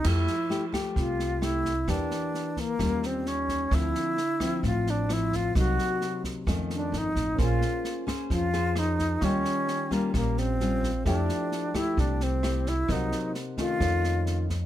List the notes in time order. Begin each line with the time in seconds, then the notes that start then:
0.04 F2 F3 A3 E4 G4, kick, cross-stick, snare, crash
0.27 snare
0.50 A3 E4 G4, snare
0.72 A3 G4, kick, cross-stick, snare
0.96 C2 C3 F4, kick, snare
1.20 snare
1.41 A3 E4 G4, cross-stick, snare
1.65 kick, snare
1.88 E2 E3 A#3 D4 G4, kick, cross-stick, snare
2.11 snare
2.34 snare
2.57 A#3, kick, snare
2.79 D#2 D#3 G3 C#4 F4, kick, cross-stick, snare
3.03 C4, snare
3.26 C#4, snare
3.48 kick, snare
3.71 D2 D3 F3 C4 E4, kick, cross-stick, snare
3.95 snare
4.17 snare
4.40 F3 C4 E4, kick, cross-stick, snare
4.63 A1 A2 F4, kick, snare
4.87 D4, snare
5.09 F3 C4 E4, cross-stick, snare
5.32 F4, kick, snare
5.55 C2 C3 F#3 A#3 D#4 F#4, kick, cross-stick, snare
5.79 snare
6.01 snare
6.24 kick, snare
6.47 F2 D#3 A3 C#4, kick, cross-stick, snare
6.70 snare
6.75 D4
6.92 G1, snare
6.98 D#4
7.15 A1, kick, snare
7.35 A#1 A#3 C#4 A#4 C5, kick, cross-stick, snare
7.39 F4 G#4 G#5
7.61 snare
7.84 snare
8.07 C#4 G#4 C5, kick, cross-stick, snare
8.30 F2 F3 F4, kick, snare
8.53 C#4 G#4 C5, snare
8.76 D#4, cross-stick, snare
8.99 kick, snare
9.20 D#2 D#3 G3 C#4 F4 C#6, kick, cross-stick, snare
9.24 D#5 G5
9.45 snare
9.68 snare
9.91 G3 A#3 C#4 F4, kick, snare
10.14 A#1 A#2 A#3, kick, cross-stick, snare
10.38 C4, snare
10.60 G3 C#4 F4, snare
10.83 kick, snare
11.05 F2 F3 A3 D4 E4 G4 A4 E5 G5, kick, cross-stick, snare
11.29 snare
11.52 snare
11.74 A3 E4 G4, kick, cross-stick, snare
11.97 C2 C3 D4, kick, snare
12.20 C4, snare
12.43 A3 E4 G4, cross-stick, snare
12.66 E4, kick, snare
12.87 C2 C3 F#3 A#3 D#4 A#4 C5, kick, cross-stick, snare
12.91 D#4 F#5
13.12 snare
13.35 snare
13.57 D#3 A3 C#4 F4, kick, snare
13.79 F2 D#4 A4 C#5, kick, cross-stick, snare
13.85 F5
14.04 snare
14.26 snare
14.49 kick, snare